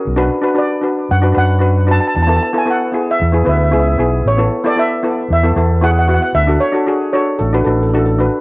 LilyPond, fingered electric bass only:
\new Staff \with { instrumentName = "Fingered electric bass" } { \clef bass \time 4/4 \key a \major \tempo 4 = 114 b,,8 r4. fis,8 fis,4. | e,8 r4. e,8 d,8 cis,8 b,,8 | a,,8 r4. e,8 e,4. | d,8 r4. a,,8 a,,4. | }